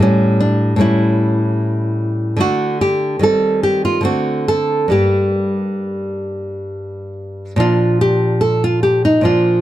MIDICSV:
0, 0, Header, 1, 2, 480
1, 0, Start_track
1, 0, Key_signature, -2, "minor"
1, 0, Tempo, 797872
1, 19, Time_signature, 3, 2, 24, 8
1, 1940, Tempo, 853485
1, 2900, Tempo, 891530
1, 4340, Tempo, 818554
1, 5515, End_track
2, 0, Start_track
2, 0, Title_t, "Nylon-string guitar"
2, 0, Program_c, 0, 24
2, 0, Note_on_c, 0, 45, 52
2, 0, Note_on_c, 0, 55, 51
2, 14, Note_on_c, 0, 61, 81
2, 241, Note_off_c, 0, 61, 0
2, 243, Note_on_c, 0, 62, 75
2, 451, Note_off_c, 0, 45, 0
2, 458, Note_on_c, 0, 45, 54
2, 463, Note_off_c, 0, 55, 0
2, 472, Note_on_c, 0, 55, 50
2, 473, Note_off_c, 0, 62, 0
2, 479, Note_on_c, 0, 61, 52
2, 485, Note_on_c, 0, 64, 88
2, 1418, Note_off_c, 0, 45, 0
2, 1420, Note_off_c, 0, 55, 0
2, 1423, Note_on_c, 0, 50, 63
2, 1429, Note_off_c, 0, 61, 0
2, 1432, Note_off_c, 0, 64, 0
2, 1434, Note_on_c, 0, 57, 51
2, 1444, Note_on_c, 0, 62, 53
2, 1447, Note_on_c, 0, 66, 84
2, 1682, Note_off_c, 0, 66, 0
2, 1692, Note_on_c, 0, 67, 78
2, 1909, Note_off_c, 0, 50, 0
2, 1915, Note_off_c, 0, 57, 0
2, 1920, Note_off_c, 0, 62, 0
2, 1921, Note_on_c, 0, 51, 51
2, 1928, Note_on_c, 0, 55, 47
2, 1929, Note_off_c, 0, 67, 0
2, 1942, Note_on_c, 0, 60, 43
2, 1945, Note_on_c, 0, 69, 84
2, 2167, Note_off_c, 0, 69, 0
2, 2170, Note_on_c, 0, 67, 92
2, 2288, Note_off_c, 0, 67, 0
2, 2290, Note_on_c, 0, 65, 80
2, 2378, Note_off_c, 0, 51, 0
2, 2380, Note_on_c, 0, 50, 52
2, 2389, Note_off_c, 0, 55, 0
2, 2391, Note_on_c, 0, 57, 47
2, 2392, Note_off_c, 0, 60, 0
2, 2399, Note_on_c, 0, 60, 46
2, 2400, Note_off_c, 0, 65, 0
2, 2403, Note_on_c, 0, 66, 89
2, 2638, Note_off_c, 0, 66, 0
2, 2648, Note_on_c, 0, 69, 92
2, 2869, Note_off_c, 0, 50, 0
2, 2871, Note_on_c, 0, 43, 44
2, 2875, Note_off_c, 0, 57, 0
2, 2879, Note_off_c, 0, 60, 0
2, 2881, Note_on_c, 0, 55, 41
2, 2887, Note_on_c, 0, 58, 41
2, 2888, Note_off_c, 0, 69, 0
2, 2891, Note_on_c, 0, 67, 74
2, 4081, Note_off_c, 0, 67, 0
2, 4304, Note_off_c, 0, 43, 0
2, 4309, Note_off_c, 0, 55, 0
2, 4312, Note_off_c, 0, 58, 0
2, 4316, Note_on_c, 0, 46, 55
2, 4323, Note_on_c, 0, 53, 46
2, 4335, Note_on_c, 0, 62, 42
2, 4336, Note_on_c, 0, 65, 86
2, 4570, Note_off_c, 0, 65, 0
2, 4578, Note_on_c, 0, 67, 81
2, 4810, Note_on_c, 0, 69, 71
2, 4812, Note_off_c, 0, 67, 0
2, 4938, Note_off_c, 0, 69, 0
2, 4945, Note_on_c, 0, 65, 77
2, 5055, Note_off_c, 0, 65, 0
2, 5057, Note_on_c, 0, 67, 76
2, 5182, Note_off_c, 0, 67, 0
2, 5186, Note_on_c, 0, 63, 89
2, 5269, Note_off_c, 0, 46, 0
2, 5273, Note_off_c, 0, 53, 0
2, 5279, Note_off_c, 0, 62, 0
2, 5282, Note_on_c, 0, 46, 56
2, 5292, Note_on_c, 0, 53, 42
2, 5298, Note_on_c, 0, 62, 49
2, 5301, Note_off_c, 0, 63, 0
2, 5304, Note_on_c, 0, 65, 78
2, 5515, Note_off_c, 0, 46, 0
2, 5515, Note_off_c, 0, 53, 0
2, 5515, Note_off_c, 0, 62, 0
2, 5515, Note_off_c, 0, 65, 0
2, 5515, End_track
0, 0, End_of_file